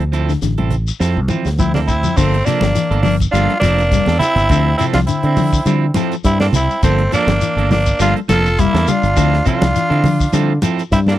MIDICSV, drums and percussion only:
0, 0, Header, 1, 3, 480
1, 0, Start_track
1, 0, Tempo, 583090
1, 1786, Time_signature, 4, 2, 24, 8
1, 9209, End_track
2, 0, Start_track
2, 0, Title_t, "Shekere"
2, 108, Note_on_c, 9, 82, 23
2, 191, Note_off_c, 9, 82, 0
2, 241, Note_on_c, 9, 82, 28
2, 323, Note_off_c, 9, 82, 0
2, 346, Note_on_c, 9, 82, 88
2, 428, Note_off_c, 9, 82, 0
2, 588, Note_on_c, 9, 82, 27
2, 671, Note_off_c, 9, 82, 0
2, 721, Note_on_c, 9, 82, 73
2, 803, Note_off_c, 9, 82, 0
2, 832, Note_on_c, 9, 82, 66
2, 915, Note_off_c, 9, 82, 0
2, 1063, Note_on_c, 9, 82, 87
2, 1145, Note_off_c, 9, 82, 0
2, 1197, Note_on_c, 9, 82, 27
2, 1279, Note_off_c, 9, 82, 0
2, 1308, Note_on_c, 9, 82, 81
2, 1391, Note_off_c, 9, 82, 0
2, 1551, Note_on_c, 9, 82, 81
2, 1633, Note_off_c, 9, 82, 0
2, 1678, Note_on_c, 9, 82, 65
2, 1760, Note_off_c, 9, 82, 0
2, 1789, Note_on_c, 9, 82, 75
2, 1871, Note_off_c, 9, 82, 0
2, 2029, Note_on_c, 9, 82, 87
2, 2111, Note_off_c, 9, 82, 0
2, 2159, Note_on_c, 9, 82, 29
2, 2241, Note_off_c, 9, 82, 0
2, 2268, Note_on_c, 9, 82, 91
2, 2350, Note_off_c, 9, 82, 0
2, 2512, Note_on_c, 9, 82, 32
2, 2594, Note_off_c, 9, 82, 0
2, 2645, Note_on_c, 9, 82, 81
2, 2727, Note_off_c, 9, 82, 0
2, 2752, Note_on_c, 9, 82, 76
2, 2835, Note_off_c, 9, 82, 0
2, 2987, Note_on_c, 9, 82, 89
2, 3069, Note_off_c, 9, 82, 0
2, 3128, Note_on_c, 9, 82, 28
2, 3210, Note_off_c, 9, 82, 0
2, 3234, Note_on_c, 9, 82, 91
2, 3317, Note_off_c, 9, 82, 0
2, 3477, Note_on_c, 9, 82, 80
2, 3559, Note_off_c, 9, 82, 0
2, 3607, Note_on_c, 9, 82, 33
2, 3689, Note_off_c, 9, 82, 0
2, 3719, Note_on_c, 9, 82, 72
2, 3802, Note_off_c, 9, 82, 0
2, 3954, Note_on_c, 9, 82, 92
2, 4036, Note_off_c, 9, 82, 0
2, 4082, Note_on_c, 9, 82, 32
2, 4164, Note_off_c, 9, 82, 0
2, 4187, Note_on_c, 9, 82, 92
2, 4269, Note_off_c, 9, 82, 0
2, 4420, Note_on_c, 9, 82, 32
2, 4502, Note_off_c, 9, 82, 0
2, 4554, Note_on_c, 9, 82, 78
2, 4637, Note_off_c, 9, 82, 0
2, 4661, Note_on_c, 9, 82, 81
2, 4743, Note_off_c, 9, 82, 0
2, 4903, Note_on_c, 9, 82, 90
2, 4985, Note_off_c, 9, 82, 0
2, 5041, Note_on_c, 9, 82, 29
2, 5123, Note_off_c, 9, 82, 0
2, 5140, Note_on_c, 9, 82, 95
2, 5222, Note_off_c, 9, 82, 0
2, 5385, Note_on_c, 9, 82, 76
2, 5467, Note_off_c, 9, 82, 0
2, 5520, Note_on_c, 9, 82, 31
2, 5602, Note_off_c, 9, 82, 0
2, 5625, Note_on_c, 9, 82, 81
2, 5707, Note_off_c, 9, 82, 0
2, 5871, Note_on_c, 9, 82, 88
2, 5953, Note_off_c, 9, 82, 0
2, 5997, Note_on_c, 9, 82, 31
2, 6080, Note_off_c, 9, 82, 0
2, 6101, Note_on_c, 9, 82, 93
2, 6184, Note_off_c, 9, 82, 0
2, 6345, Note_on_c, 9, 82, 30
2, 6427, Note_off_c, 9, 82, 0
2, 6470, Note_on_c, 9, 82, 84
2, 6553, Note_off_c, 9, 82, 0
2, 6584, Note_on_c, 9, 82, 77
2, 6666, Note_off_c, 9, 82, 0
2, 6827, Note_on_c, 9, 82, 93
2, 6910, Note_off_c, 9, 82, 0
2, 6962, Note_on_c, 9, 82, 31
2, 7044, Note_off_c, 9, 82, 0
2, 7066, Note_on_c, 9, 82, 89
2, 7148, Note_off_c, 9, 82, 0
2, 7305, Note_on_c, 9, 82, 83
2, 7387, Note_off_c, 9, 82, 0
2, 7433, Note_on_c, 9, 82, 29
2, 7515, Note_off_c, 9, 82, 0
2, 7547, Note_on_c, 9, 82, 80
2, 7629, Note_off_c, 9, 82, 0
2, 7787, Note_on_c, 9, 82, 84
2, 7869, Note_off_c, 9, 82, 0
2, 7924, Note_on_c, 9, 82, 32
2, 8006, Note_off_c, 9, 82, 0
2, 8031, Note_on_c, 9, 82, 95
2, 8113, Note_off_c, 9, 82, 0
2, 8276, Note_on_c, 9, 82, 30
2, 8359, Note_off_c, 9, 82, 0
2, 8400, Note_on_c, 9, 82, 83
2, 8483, Note_off_c, 9, 82, 0
2, 8505, Note_on_c, 9, 82, 74
2, 8588, Note_off_c, 9, 82, 0
2, 8747, Note_on_c, 9, 82, 91
2, 8829, Note_off_c, 9, 82, 0
2, 8882, Note_on_c, 9, 82, 30
2, 8965, Note_off_c, 9, 82, 0
2, 8994, Note_on_c, 9, 82, 94
2, 9076, Note_off_c, 9, 82, 0
2, 9209, End_track
3, 0, Start_track
3, 0, Title_t, "Drums"
3, 2, Note_on_c, 9, 42, 32
3, 84, Note_off_c, 9, 42, 0
3, 108, Note_on_c, 9, 42, 48
3, 190, Note_off_c, 9, 42, 0
3, 235, Note_on_c, 9, 38, 26
3, 318, Note_off_c, 9, 38, 0
3, 345, Note_on_c, 9, 63, 30
3, 347, Note_on_c, 9, 38, 29
3, 347, Note_on_c, 9, 42, 63
3, 427, Note_off_c, 9, 63, 0
3, 430, Note_off_c, 9, 38, 0
3, 430, Note_off_c, 9, 42, 0
3, 475, Note_on_c, 9, 42, 31
3, 480, Note_on_c, 9, 63, 77
3, 557, Note_off_c, 9, 42, 0
3, 562, Note_off_c, 9, 63, 0
3, 580, Note_on_c, 9, 64, 81
3, 583, Note_on_c, 9, 42, 49
3, 663, Note_off_c, 9, 64, 0
3, 665, Note_off_c, 9, 42, 0
3, 821, Note_on_c, 9, 63, 31
3, 825, Note_on_c, 9, 38, 46
3, 904, Note_off_c, 9, 63, 0
3, 907, Note_off_c, 9, 38, 0
3, 963, Note_on_c, 9, 48, 44
3, 1045, Note_off_c, 9, 48, 0
3, 1056, Note_on_c, 9, 63, 94
3, 1076, Note_on_c, 9, 47, 58
3, 1138, Note_off_c, 9, 63, 0
3, 1158, Note_off_c, 9, 47, 0
3, 1191, Note_on_c, 9, 63, 60
3, 1202, Note_on_c, 9, 38, 48
3, 1274, Note_off_c, 9, 63, 0
3, 1284, Note_off_c, 9, 38, 0
3, 1306, Note_on_c, 9, 63, 98
3, 1311, Note_on_c, 9, 36, 64
3, 1388, Note_off_c, 9, 63, 0
3, 1394, Note_off_c, 9, 36, 0
3, 1434, Note_on_c, 9, 64, 94
3, 1440, Note_on_c, 9, 38, 61
3, 1516, Note_off_c, 9, 64, 0
3, 1523, Note_off_c, 9, 38, 0
3, 1550, Note_on_c, 9, 36, 72
3, 1633, Note_off_c, 9, 36, 0
3, 1674, Note_on_c, 9, 64, 69
3, 1679, Note_on_c, 9, 43, 66
3, 1756, Note_off_c, 9, 64, 0
3, 1762, Note_off_c, 9, 43, 0
3, 1791, Note_on_c, 9, 36, 100
3, 1793, Note_on_c, 9, 38, 33
3, 1793, Note_on_c, 9, 49, 94
3, 1873, Note_off_c, 9, 36, 0
3, 1875, Note_off_c, 9, 38, 0
3, 1875, Note_off_c, 9, 49, 0
3, 1926, Note_on_c, 9, 42, 38
3, 2009, Note_off_c, 9, 42, 0
3, 2037, Note_on_c, 9, 38, 28
3, 2037, Note_on_c, 9, 42, 55
3, 2119, Note_off_c, 9, 38, 0
3, 2119, Note_off_c, 9, 42, 0
3, 2148, Note_on_c, 9, 63, 104
3, 2161, Note_on_c, 9, 38, 77
3, 2230, Note_off_c, 9, 63, 0
3, 2243, Note_off_c, 9, 38, 0
3, 2267, Note_on_c, 9, 38, 31
3, 2267, Note_on_c, 9, 42, 74
3, 2349, Note_off_c, 9, 38, 0
3, 2349, Note_off_c, 9, 42, 0
3, 2401, Note_on_c, 9, 42, 36
3, 2483, Note_off_c, 9, 42, 0
3, 2496, Note_on_c, 9, 63, 94
3, 2496, Note_on_c, 9, 64, 84
3, 2508, Note_on_c, 9, 46, 73
3, 2578, Note_off_c, 9, 63, 0
3, 2578, Note_off_c, 9, 64, 0
3, 2591, Note_off_c, 9, 46, 0
3, 2636, Note_on_c, 9, 42, 36
3, 2638, Note_on_c, 9, 36, 65
3, 2718, Note_off_c, 9, 42, 0
3, 2720, Note_off_c, 9, 36, 0
3, 2754, Note_on_c, 9, 42, 72
3, 2836, Note_off_c, 9, 42, 0
3, 2879, Note_on_c, 9, 42, 32
3, 2961, Note_off_c, 9, 42, 0
3, 2976, Note_on_c, 9, 63, 102
3, 2993, Note_on_c, 9, 38, 29
3, 2993, Note_on_c, 9, 42, 53
3, 3058, Note_off_c, 9, 63, 0
3, 3075, Note_off_c, 9, 38, 0
3, 3075, Note_off_c, 9, 42, 0
3, 3115, Note_on_c, 9, 42, 32
3, 3197, Note_off_c, 9, 42, 0
3, 3225, Note_on_c, 9, 36, 80
3, 3225, Note_on_c, 9, 38, 34
3, 3225, Note_on_c, 9, 42, 68
3, 3307, Note_off_c, 9, 36, 0
3, 3307, Note_off_c, 9, 38, 0
3, 3307, Note_off_c, 9, 42, 0
3, 3344, Note_on_c, 9, 63, 85
3, 3355, Note_on_c, 9, 38, 76
3, 3427, Note_off_c, 9, 63, 0
3, 3437, Note_off_c, 9, 38, 0
3, 3455, Note_on_c, 9, 64, 86
3, 3462, Note_on_c, 9, 42, 57
3, 3537, Note_off_c, 9, 64, 0
3, 3544, Note_off_c, 9, 42, 0
3, 3589, Note_on_c, 9, 64, 76
3, 3590, Note_on_c, 9, 42, 35
3, 3671, Note_off_c, 9, 64, 0
3, 3672, Note_off_c, 9, 42, 0
3, 3697, Note_on_c, 9, 42, 76
3, 3702, Note_on_c, 9, 36, 96
3, 3779, Note_off_c, 9, 42, 0
3, 3785, Note_off_c, 9, 36, 0
3, 3939, Note_on_c, 9, 38, 28
3, 3939, Note_on_c, 9, 42, 53
3, 4021, Note_off_c, 9, 38, 0
3, 4021, Note_off_c, 9, 42, 0
3, 4062, Note_on_c, 9, 38, 77
3, 4062, Note_on_c, 9, 42, 32
3, 4064, Note_on_c, 9, 63, 103
3, 4145, Note_off_c, 9, 38, 0
3, 4145, Note_off_c, 9, 42, 0
3, 4146, Note_off_c, 9, 63, 0
3, 4173, Note_on_c, 9, 42, 77
3, 4255, Note_off_c, 9, 42, 0
3, 4306, Note_on_c, 9, 42, 36
3, 4388, Note_off_c, 9, 42, 0
3, 4416, Note_on_c, 9, 46, 76
3, 4420, Note_on_c, 9, 63, 89
3, 4420, Note_on_c, 9, 64, 93
3, 4498, Note_off_c, 9, 46, 0
3, 4502, Note_off_c, 9, 63, 0
3, 4502, Note_off_c, 9, 64, 0
3, 4550, Note_on_c, 9, 36, 74
3, 4633, Note_off_c, 9, 36, 0
3, 4658, Note_on_c, 9, 63, 76
3, 4659, Note_on_c, 9, 42, 74
3, 4740, Note_off_c, 9, 63, 0
3, 4741, Note_off_c, 9, 42, 0
3, 4893, Note_on_c, 9, 63, 100
3, 4896, Note_on_c, 9, 38, 30
3, 4896, Note_on_c, 9, 42, 60
3, 4975, Note_off_c, 9, 63, 0
3, 4979, Note_off_c, 9, 38, 0
3, 4979, Note_off_c, 9, 42, 0
3, 5035, Note_on_c, 9, 42, 36
3, 5118, Note_off_c, 9, 42, 0
3, 5141, Note_on_c, 9, 42, 79
3, 5142, Note_on_c, 9, 36, 82
3, 5224, Note_off_c, 9, 42, 0
3, 5225, Note_off_c, 9, 36, 0
3, 5267, Note_on_c, 9, 63, 87
3, 5272, Note_on_c, 9, 38, 73
3, 5349, Note_off_c, 9, 63, 0
3, 5355, Note_off_c, 9, 38, 0
3, 5375, Note_on_c, 9, 64, 88
3, 5384, Note_on_c, 9, 42, 59
3, 5457, Note_off_c, 9, 64, 0
3, 5466, Note_off_c, 9, 42, 0
3, 5619, Note_on_c, 9, 42, 81
3, 5623, Note_on_c, 9, 36, 105
3, 5702, Note_off_c, 9, 42, 0
3, 5705, Note_off_c, 9, 36, 0
3, 5749, Note_on_c, 9, 42, 36
3, 5831, Note_off_c, 9, 42, 0
3, 5863, Note_on_c, 9, 38, 27
3, 5863, Note_on_c, 9, 42, 53
3, 5945, Note_off_c, 9, 38, 0
3, 5945, Note_off_c, 9, 42, 0
3, 5992, Note_on_c, 9, 63, 104
3, 5995, Note_on_c, 9, 38, 76
3, 6074, Note_off_c, 9, 63, 0
3, 6077, Note_off_c, 9, 38, 0
3, 6104, Note_on_c, 9, 42, 78
3, 6186, Note_off_c, 9, 42, 0
3, 6242, Note_on_c, 9, 42, 38
3, 6324, Note_off_c, 9, 42, 0
3, 6346, Note_on_c, 9, 63, 93
3, 6346, Note_on_c, 9, 64, 88
3, 6351, Note_on_c, 9, 38, 32
3, 6351, Note_on_c, 9, 46, 75
3, 6428, Note_off_c, 9, 63, 0
3, 6428, Note_off_c, 9, 64, 0
3, 6433, Note_off_c, 9, 38, 0
3, 6433, Note_off_c, 9, 46, 0
3, 6478, Note_on_c, 9, 36, 67
3, 6560, Note_off_c, 9, 36, 0
3, 6589, Note_on_c, 9, 42, 65
3, 6671, Note_off_c, 9, 42, 0
3, 6721, Note_on_c, 9, 42, 33
3, 6804, Note_off_c, 9, 42, 0
3, 6825, Note_on_c, 9, 63, 94
3, 6833, Note_on_c, 9, 38, 30
3, 6833, Note_on_c, 9, 42, 58
3, 6907, Note_off_c, 9, 63, 0
3, 6916, Note_off_c, 9, 38, 0
3, 6916, Note_off_c, 9, 42, 0
3, 6965, Note_on_c, 9, 42, 32
3, 7048, Note_off_c, 9, 42, 0
3, 7068, Note_on_c, 9, 36, 79
3, 7069, Note_on_c, 9, 38, 31
3, 7069, Note_on_c, 9, 42, 70
3, 7150, Note_off_c, 9, 36, 0
3, 7151, Note_off_c, 9, 38, 0
3, 7151, Note_off_c, 9, 42, 0
3, 7200, Note_on_c, 9, 63, 86
3, 7204, Note_on_c, 9, 38, 72
3, 7282, Note_off_c, 9, 63, 0
3, 7286, Note_off_c, 9, 38, 0
3, 7315, Note_on_c, 9, 42, 54
3, 7315, Note_on_c, 9, 64, 94
3, 7397, Note_off_c, 9, 42, 0
3, 7397, Note_off_c, 9, 64, 0
3, 7448, Note_on_c, 9, 42, 34
3, 7530, Note_off_c, 9, 42, 0
3, 7550, Note_on_c, 9, 36, 102
3, 7554, Note_on_c, 9, 42, 72
3, 7632, Note_off_c, 9, 36, 0
3, 7636, Note_off_c, 9, 42, 0
3, 7683, Note_on_c, 9, 38, 31
3, 7765, Note_off_c, 9, 38, 0
3, 7790, Note_on_c, 9, 36, 66
3, 7791, Note_on_c, 9, 42, 52
3, 7873, Note_off_c, 9, 36, 0
3, 7873, Note_off_c, 9, 42, 0
3, 7917, Note_on_c, 9, 63, 113
3, 7922, Note_on_c, 9, 38, 77
3, 7922, Note_on_c, 9, 42, 34
3, 7999, Note_off_c, 9, 63, 0
3, 8005, Note_off_c, 9, 38, 0
3, 8005, Note_off_c, 9, 42, 0
3, 8034, Note_on_c, 9, 42, 76
3, 8116, Note_off_c, 9, 42, 0
3, 8163, Note_on_c, 9, 42, 37
3, 8245, Note_off_c, 9, 42, 0
3, 8263, Note_on_c, 9, 63, 91
3, 8263, Note_on_c, 9, 64, 96
3, 8274, Note_on_c, 9, 46, 68
3, 8345, Note_off_c, 9, 63, 0
3, 8345, Note_off_c, 9, 64, 0
3, 8356, Note_off_c, 9, 46, 0
3, 8400, Note_on_c, 9, 36, 69
3, 8482, Note_off_c, 9, 36, 0
3, 8501, Note_on_c, 9, 63, 76
3, 8506, Note_on_c, 9, 42, 78
3, 8583, Note_off_c, 9, 63, 0
3, 8588, Note_off_c, 9, 42, 0
3, 8743, Note_on_c, 9, 63, 106
3, 8748, Note_on_c, 9, 42, 59
3, 8825, Note_off_c, 9, 63, 0
3, 8830, Note_off_c, 9, 42, 0
3, 8884, Note_on_c, 9, 42, 34
3, 8966, Note_off_c, 9, 42, 0
3, 8990, Note_on_c, 9, 36, 76
3, 8991, Note_on_c, 9, 42, 84
3, 9073, Note_off_c, 9, 36, 0
3, 9074, Note_off_c, 9, 42, 0
3, 9108, Note_on_c, 9, 63, 83
3, 9121, Note_on_c, 9, 38, 76
3, 9190, Note_off_c, 9, 63, 0
3, 9203, Note_off_c, 9, 38, 0
3, 9209, End_track
0, 0, End_of_file